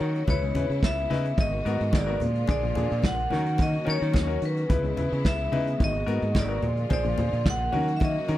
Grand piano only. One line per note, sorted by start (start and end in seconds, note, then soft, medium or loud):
0.01 0.06 F#4 soft
0.01 0.06 A#4 soft
0.28 0.41 E4 medium
0.28 0.41 B4 medium
0.43 0.54 C#3 medium
0.43 0.54 G#3 medium
0.55 0.69 E4 medium
0.55 0.69 B4 medium
1.10 1.24 D#4 medium
1.10 1.24 E4 medium
1.10 1.24 B4 loud
1.38 1.52 G#2 medium
1.38 1.52 D#3 medium
1.53 1.58 F#4 soft
1.53 1.58 A#4 soft
1.65 1.79 B3 medium
1.65 1.79 F#4 medium
1.65 1.79 A#4 medium
1.93 2.07 G#2 medium
1.93 2.07 D#3 soft
2.06 2.19 B3 medium
2.06 2.19 F#4 medium
2.06 2.19 A#4 medium
2.19 2.26 D4 soft
2.19 2.26 G#4 soft
2.47 2.62 D4 medium
2.47 2.62 G#4 medium
2.63 2.75 A#2 medium
2.63 2.75 F3 medium
2.75 2.89 D4 medium
2.75 2.90 G#4 medium
3.03 3.17 A#2 medium
3.03 3.17 F3 medium
3.30 3.44 C#4 medium
3.30 3.44 F#4 medium
3.30 3.44 A#4 medium
3.45 3.51 F#4 soft
3.45 3.51 A#4 soft
3.58 3.72 D#3 medium
3.58 3.72 A#3 medium
3.73 3.79 F#4 soft
3.73 3.79 A#4 soft
3.85 3.99 C#4 medium
3.85 4.00 F#4 medium
3.85 4.00 A#4 medium
4.13 4.28 D#3 soft
4.13 4.27 A#3 medium
4.26 4.40 C#4 medium
4.26 4.39 F#4 medium
4.26 4.39 A#4 medium
4.40 4.47 F#4 soft
4.40 4.47 A#4 soft
4.69 4.83 E4 medium
4.69 4.83 B4 medium
4.84 4.96 C#3 medium
4.84 4.96 G#3 medium
4.97 5.11 E4 medium
4.97 5.11 B4 medium
5.52 5.66 D#4 loud
5.52 5.66 E4 medium
5.52 5.66 B4 medium
5.78 5.93 G#2 medium
5.78 5.93 D#3 medium
5.94 6.00 F#4 soft
5.94 6.00 A#4 soft
6.06 6.21 B3 medium
6.06 6.21 F#4 medium
6.06 6.21 A#4 loud
6.35 6.49 G#2 medium
6.35 6.49 D#3 medium
6.48 6.61 B3 medium
6.48 6.61 F#4 medium
6.48 6.61 A#4 medium
6.62 6.68 G#4 soft
6.62 6.68 C5 soft
6.89 7.04 G#4 medium
6.89 7.04 C5 medium
7.04 7.17 A#2 medium
7.04 7.17 F3 medium
7.17 7.31 G#4 medium
7.17 7.32 C5 medium
7.72 7.86 C#4 medium
7.72 7.87 F#4 medium
7.72 7.87 A#4 medium
8.01 8.15 D#3 medium
8.01 8.15 A#3 medium
8.15 8.21 F#4 soft
8.15 8.21 A#4 soft
8.28 8.38 C#4 medium
8.28 8.38 F#4 medium
8.28 8.38 A#4 medium